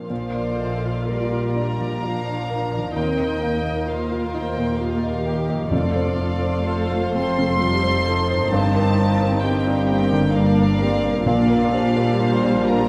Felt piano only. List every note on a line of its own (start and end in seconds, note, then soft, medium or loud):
0.00 0.12 A#3 soft
0.00 0.12 F4 soft
0.00 0.13 A#4 soft
0.00 0.13 C5 soft
0.10 2.92 A#2 soft
0.34 0.73 D5 soft
0.60 0.83 D#5 soft
0.83 1.22 D5 soft
1.07 1.46 A#4 soft
1.33 1.70 F4 soft
1.56 1.93 D4 soft
1.79 2.17 F3 soft
2.02 2.40 F4 soft
2.26 2.63 D5 soft
2.50 2.87 A#4 soft
2.73 2.96 D5 soft
2.96 5.67 D#2 soft
3.19 3.56 D#5 soft
3.43 3.66 F5 soft
3.65 4.02 D#5 soft
3.88 4.25 A#4 soft
4.11 4.48 F4 soft
4.34 4.71 D#4 soft
4.57 4.94 A#2 soft
4.80 5.17 F4 soft
5.03 5.40 D#5 soft
5.25 5.62 A#4 soft
5.50 5.72 D#5 soft
5.72 8.48 F2 medium
5.95 6.32 C5 soft
6.19 6.42 D5 soft
6.41 6.80 C5 soft
6.66 7.05 A4 soft
6.90 7.28 F4 medium
7.15 7.52 C4 soft
7.38 7.75 C3 soft
7.60 7.97 F4 soft
7.83 8.20 C5 medium
8.08 8.44 A4 soft
8.31 8.53 C5 medium
8.52 11.22 G2 medium
8.75 9.11 A#4 medium
8.99 9.21 C5 soft
9.22 9.57 A#4 medium
9.44 9.80 G4 medium
9.67 10.03 D4 medium
9.89 10.25 A#3 medium
10.12 10.48 D3 medium
10.35 10.71 D4 medium
10.59 10.95 A#4 medium
10.82 11.18 G4 medium
11.05 11.27 A#4 medium
11.27 12.88 A#2 medium
11.49 11.86 A#4 medium
11.73 11.96 C5 soft
11.96 12.34 A#4 medium
12.20 12.58 F4 soft
12.43 12.81 D4 medium
12.69 12.88 A#3 medium